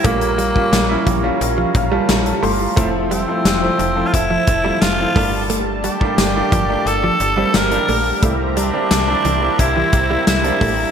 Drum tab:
HH |xxx-x-x-x-x-xxo-|x-x-x-x-x-x-x-o-|x-x-x-x-x-x-xxo-|x-x-x-x-x-x-xxo-|
TB |----x-------x---|----x-------x---|----x-------x---|----x-------x---|
SD |----o-------o---|----o-------o---|----o-------o---|----o-------o---|
BD |o--o--o---o-----|o-------o-o---o-|---o--o---------|o-------o-o---o-|